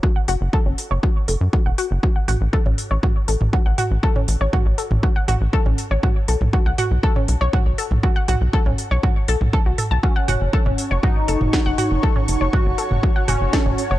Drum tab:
HH |--o---o---o---o-|--o---o---o---o-|--o---o---o---o-|--o---o---o---o-|
SD |----------------|----------------|----------------|----------------|
T2 |----------------|--o--o--o--o--o-|-o--o--o--o--o--|o--o--o--o--o--o|
BD |o---o---o---o---|o---o---o---o---|o---o---o---o---|o---o---o---o---|

HH |--o---o---o---o-|--o---o---o---o-|--o---o---o---o-|
SD |----------------|------------o---|------------o---|
T2 |--o--o--o--o--o-|--o--o--o--o--o-|-o--o--o--o--o--|
BD |o---o---o---o---|o---o---o---o---|o---o---o---o---|